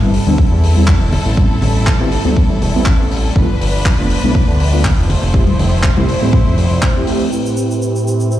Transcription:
Already playing: string section G3 C4 E4 A4
0.01 analog synth bass G1, analog polysynth G3 B3 C4 E4
0.13 open hi-hat
0.26 analog synth bass D2, analog polysynth G3 B3 C4 D4, high conga
0.38 kick
0.52 analog synth bass E2
0.63 open hi-hat
0.76 analog polysynth G3 B3 C4 E4
0.87 kick, clap
1.01 analog synth bass E1
1.12 open hi-hat, low conga
1.26 analog synth bass A1
1.37 analog polysynth G3 B3 C4 E4, kick
1.62 analog synth bass A1, open hi-hat, low conga
1.87 kick, clap
2.00 analog synth bass G1, analog polysynth G3 B3 C4 E4
2.12 open hi-hat
2.24 analog synth bass D2, analog polysynth G3 B3 C4 D4, high conga
2.37 kick
2.50 analog synth bass A1
2.61 analog synth bass E1, open hi-hat
2.74 analog synth bass A1, analog polysynth G3 B3 C4 E4
2.86 kick, clap
3.11 open hi-hat
3.35 analog synth bass G1, string section F3 D4 B4, analog polysynth A3 B3 D4 F4, kick
3.61 analog synth bass G1, open hi-hat
3.85 kick, clap
3.98 analog synth bass F1, analog polysynth A3 B3 D4 F4
4.10 open hi-hat
4.23 analog synth bass B1, analog polysynth A3 B3 D4 E4, high conga
4.35 kick
4.48 analog synth bass D2
4.60 open hi-hat
4.72 analog polysynth A3 B3 D4 F4
4.85 kick, clap
4.98 analog synth bass F1
5.09 string section A3 E4 C5, open hi-hat, low conga
5.23 analog synth bass F1
5.34 analog polysynth A3 C4 E4 G4, kick
5.47 high conga
5.59 analog synth bass F1, open hi-hat, low conga
5.83 kick, clap
5.96 analog synth bass C2, analog polysynth A3 C4 E4 G4, high conga
6.08 open hi-hat
6.21 analog synth bass A1, analog polysynth A3 C4 E4 G4, high conga
6.33 kick
6.47 analog synth bass F1
6.58 analog synth bass F1, open hi-hat
6.71 analog synth bass F1
6.82 kick, clap
6.95 analog polysynth A3 C4 E4 G4
7.07 open hi-hat
7.32 analog polysynth A2 C4 E4 G4 B4, string section A3 C4 E4 G4, shaker
7.46 shaker
7.57 shaker
7.71 shaker
7.82 shaker
7.96 shaker
8.08 shaker
8.20 shaker
8.32 shaker

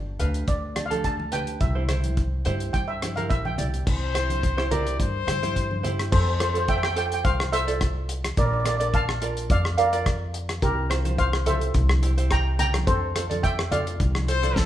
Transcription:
Already playing: upright bass G1
0.19 upright bass D2, ukulele D4 G4 B4, steel pan F5, closed hi-hat, low conga
0.34 closed hi-hat
0.48 upright bass D2, steel pan D5, kick, closed hi-hat
0.76 ukulele D4 G4 D5, cross-stick, closed hi-hat, high conga
0.86 steel pan F5
0.90 ukulele D4 G4 A4, closed hi-hat, high conga
1.04 steel pan A5, kick, closed hi-hat
1.20 high conga
1.32 ukulele D4 G4 B4, steel pan G5, closed hi-hat, low conga
1.47 closed hi-hat
1.60 upright bass C2, steel pan E5, kick, closed hi-hat, low conga
1.75 ukulele E4 G4 C5, high conga
1.89 ukulele E4 G4 C5, cross-stick, closed hi-hat, low conga
2.04 closed hi-hat, high conga
2.17 kick, closed hi-hat
2.45 upright bass G2, ukulele E4 G4 C5, closed hi-hat, low conga
2.60 closed hi-hat
2.73 upright bass G2, steel pan G5, kick, closed hi-hat
2.88 steel pan E5
3.02 ukulele E4 G4 C5, cross-stick, closed hi-hat, high conga
3.16 ukulele E4 G4 A#4, steel pan F5, closed hi-hat, high conga
3.30 upright bass A#1, steel pan E5, kick, closed hi-hat
3.45 steel pan G5, high conga
3.58 upright bass C2, ukulele E4 G4 D5, closed hi-hat, low conga
3.74 closed hi-hat
3.87 upright bass C2, trumpet C5, kick, crash
4.14 ukulele E4 G4 C5, cross-stick, closed hi-hat
4.30 closed hi-hat, high conga
4.43 kick, closed hi-hat
4.57 ukulele E4 G4 C5, cross-stick
4.71 ukulele E4 G4 A#4, trumpet D5, closed hi-hat, low conga
4.87 closed hi-hat
5.00 upright bass G2, trumpet C5, kick, closed hi-hat
5.27 upright bass G2, ukulele E4 G4 C5, cross-stick, closed hi-hat, low conga
5.42 ukulele E4 G4 C5, closed hi-hat, high conga
5.56 kick, closed hi-hat
5.71 high conga
5.83 ukulele E4 G4 C5, closed hi-hat, low conga
5.99 cross-stick, closed hi-hat
6.12 upright bass F2, steel pan A4 C5, kick, crash
6.20 steel pan C5
6.28 steel pan C5
6.34 steel pan C5
6.40 ukulele F4 A4 C5, steel pan C5, cross-stick, closed hi-hat
6.49 steel pan C5
6.54 ukulele F4 A4 C5, steel pan C5, closed hi-hat
6.68 steel pan E5 G5, kick, closed hi-hat
6.77 steel pan G5
6.83 steel pan G5, cross-stick
6.91 steel pan G5
6.96 ukulele F4 A4 C5, steel pan G5, closed hi-hat
7.06 steel pan G5
7.12 steel pan G5, closed hi-hat
7.25 upright bass C2, steel pan C5 F5, kick, closed hi-hat
7.40 cross-stick
7.52 ukulele F4 A4 C5, steel pan C5 E5, closed hi-hat
7.67 ukulele F4 A4 D5, closed hi-hat
7.81 kick, cross-stick, closed hi-hat
8.09 closed hi-hat
8.24 cross-stick, closed hi-hat
8.37 upright bass A#1, steel pan A#4 D5, kick, closed hi-hat
8.46 steel pan D5
8.53 steel pan D5
8.60 steel pan D5
8.65 ukulele F4 A#4 D5, steel pan D5, cross-stick, closed hi-hat
8.76 steel pan D5, ukulele D5
8.80 ukulele F4 A#4, steel pan D5, closed hi-hat
8.94 steel pan F5 A5, kick, closed hi-hat
9.09 cross-stick
9.22 ukulele F4 A#4 D5, closed hi-hat
9.37 closed hi-hat
9.50 upright bass F2, steel pan D5 F5, kick, closed hi-hat
9.65 cross-stick
9.77 ukulele F4 A#4 F5, steel pan A#4 D5, closed hi-hat
9.93 ukulele F4 A#4 D5, closed hi-hat
10.06 kick, cross-stick, closed hi-hat
10.34 closed hi-hat
10.49 cross-stick, closed hi-hat
10.62 upright bass C2, steel pan G4 A#4, kick, closed hi-hat
10.90 ukulele F4 G4 C5, cross-stick, closed hi-hat
11.05 ukulele F4 G4 C5, closed hi-hat, high conga
11.18 steel pan C5 F5, kick, closed hi-hat
11.33 cross-stick
11.46 ukulele F4 G4 A4, steel pan C5 E5, closed hi-hat, high conga, low conga
11.61 closed hi-hat
11.74 upright bass C2, kick, closed hi-hat
11.89 cross-stick, high conga
12.02 ukulele E4 G4 C5, closed hi-hat
12.17 ukulele E4 G4 C5, closed hi-hat
12.31 steel pan G5 A#5, kick, cross-stick, closed hi-hat
12.59 steel pan G5 A#5, closed hi-hat, low conga
12.74 cross-stick, closed hi-hat, high conga
12.87 upright bass F2, steel pan A4 C5, kick, closed hi-hat
13.15 ukulele F4 A4 C5, cross-stick, closed hi-hat
13.30 ukulele F4 A4 D5, closed hi-hat, high conga
13.43 steel pan E5 G5, kick, closed hi-hat
13.59 cross-stick
13.71 ukulele F4 A4 D5, steel pan D5 F5, closed hi-hat, high conga, low conga
13.87 closed hi-hat
14.00 upright bass C2, kick, closed hi-hat
14.15 cross-stick, high conga
14.28 ukulele F4 A4 C5, trumpet C5, closed hi-hat
14.43 ukulele F4 A4 D5, closed hi-hat, high conga
14.56 upright bass D2, trumpet A4, kick, snare, high conga

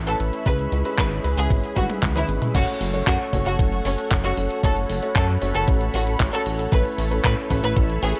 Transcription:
Already playing: analog synth bass A1, analog synth pad A4 C#5 E5 B5
0.07 grand piano A3 C#4 E4 B4, violin section A4
0.20 analog synth bass A1, closed hi-hat
0.33 closed hi-hat
0.46 analog synth bass C#2, grand piano G#3 C#4 E4 B4, analog synth pad G#4, violin section B4, kick, closed hi-hat
0.59 closed hi-hat
0.72 analog synth bass C#2, closed hi-hat
0.85 grand piano G#3 C#4 E4 B4, closed hi-hat
0.98 analog synth bass G#1, violin section B4, kick, clap, closed hi-hat
1.11 closed hi-hat
1.24 analog synth bass C#2, grand piano G#3 C#4 E4 B4, closed hi-hat
1.37 analog synth bass C#2, violin section G#4, closed hi-hat
1.50 analog synth bass G#1, kick, closed hi-hat
1.64 closed hi-hat
1.76 analog synth bass G#1, grand piano G#3 C#4 E4 B4, violin section F#4, kick, closed hi-hat, high tom
1.90 closed hi-hat, high tom
2.03 analog synth bass C#2, kick, clap, closed hi-hat, mid tom
2.16 grand piano G#3 C#4 E4 B4, violin section E4, closed hi-hat, mid tom
2.29 analog synth bass G#1, closed hi-hat
2.42 closed hi-hat, mid tom
2.55 analog synth bass F#1, grand piano A3 C#4 F#4 C#5, violin section F#4, analog synth pad A4 C#5 F#5 C#6, kick, closed hi-hat, crash
2.68 closed hi-hat
2.81 analog synth bass F#1, open hi-hat
2.94 grand piano A3 C#4 F#4 C#5, closed hi-hat
3.07 analog synth bass F#2, violin section F#4, kick, clap, closed hi-hat
3.33 analog synth bass F#1, grand piano A3 C#4 F#4 C#5, kick, open hi-hat
3.46 analog synth bass F#1, violin section F#4, closed hi-hat
3.59 analog synth bass F#1, kick, closed hi-hat
3.72 closed hi-hat
3.85 analog synth bass F#1, grand piano A3 C#4 F#4 C#5, violin section C#4, open hi-hat
3.98 closed hi-hat
4.11 analog synth bass F#1, kick, clap, closed hi-hat
4.24 grand piano A3 C#4 F#4 C#5, violin section F#4
4.37 analog synth bass F#1, open hi-hat
4.50 closed hi-hat
4.63 analog synth bass F#1, grand piano A3 C#4 F#4 C#5, violin section A4, analog synth pad B5, kick, closed hi-hat
4.77 closed hi-hat
4.90 analog synth bass F#1, open hi-hat
5.03 grand piano A3 C#4 F#4 C#5, closed hi-hat
5.16 analog synth bass F#2, violin section A4, kick, clap, closed hi-hat
5.42 analog synth bass F#1, grand piano A3 C#4 F#4 C#5, open hi-hat
5.55 analog synth bass F#1, violin section A4, closed hi-hat
5.68 analog synth bass A1, kick, closed hi-hat
5.81 closed hi-hat
5.94 analog synth bass A1, grand piano A3 C#4 F#4 C#5, violin section F#4, open hi-hat
6.07 closed hi-hat
6.20 analog synth bass A1, kick, clap, closed hi-hat
6.33 grand piano A3 C#4 F#4 C#5, violin section A4
6.46 analog synth bass A1, open hi-hat
6.59 closed hi-hat
6.72 analog synth bass A1, grand piano A3 C#4 E4 B4, violin section B4, analog synth pad E5 B5, kick, closed hi-hat
6.85 closed hi-hat
6.98 analog synth bass A1, open hi-hat
7.11 grand piano A3 C#4 E4 B4, closed hi-hat
7.24 analog synth bass A2, violin section B4, kick, clap, closed hi-hat
7.50 analog synth bass A1, grand piano A3 C#4 E4 B4, kick, open hi-hat
7.63 analog synth bass A1, violin section B4, closed hi-hat
7.77 analog synth bass A1, kick, closed hi-hat
7.90 closed hi-hat
8.03 analog synth bass A1, grand piano A3 C#4 E4 B4, violin section G#4, open hi-hat
8.16 closed hi-hat

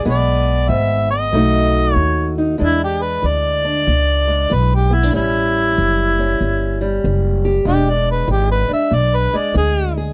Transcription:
0.05 upright bass B1, steel-string acoustic guitar E2 G#3 B3 G#4
0.09 harmonica D5
0.68 upright bass G#1, steel-string acoustic guitar G#2, harmonica E5
1.11 harmonica D#5
1.33 upright bass B1, steel-string acoustic guitar B2 A3 D#4 F#4
1.94 upright bass D#2, steel-string acoustic guitar D#3, harmonica C#5
2.38 steel-string acoustic guitar D#4
2.58 steel-string acoustic guitar E2 G#3 D4, upright bass E2, harmonica E4
2.84 harmonica G4
3.02 harmonica B4
3.22 upright bass D2, steel-string acoustic guitar E3
3.27 harmonica D5
3.65 steel-string acoustic guitar D4
3.87 upright bass C#2, steel-string acoustic guitar B2
4.28 steel-string acoustic guitar G#3
4.50 upright bass B1, steel-string acoustic guitar E3, harmonica B4
4.75 harmonica G4
4.90 steel-string acoustic guitar B3, harmonica E4
5.03 steel-string acoustic guitar D4
5.13 upright bass A1, steel-string acoustic guitar A2 G3 C#4, harmonica E4
5.78 upright bass F#1, steel-string acoustic guitar E3
6.19 steel-string acoustic guitar C#4
6.41 upright bass G1, steel-string acoustic guitar E2
6.81 steel-string acoustic guitar G3
7.04 upright bass F#1, steel-string acoustic guitar E3
7.45 steel-string acoustic guitar G4
7.65 upright bass E1, steel-string acoustic guitar E2 G#3 D4, harmonica G4
7.90 harmonica D5
8.11 harmonica B4
8.28 upright bass G#1, steel-string acoustic guitar E3, harmonica G4
8.51 harmonica B4
8.68 steel-string acoustic guitar D4, muted upright bass stroke
8.74 harmonica E5
8.91 upright bass B1, steel-string acoustic guitar B2, harmonica D5
9.16 harmonica B4
9.33 steel-string acoustic guitar G#3, harmonica D5, muted upright bass stroke
9.54 upright bass D2, steel-string acoustic guitar E3, harmonica G#4
9.97 steel-string acoustic guitar G#4

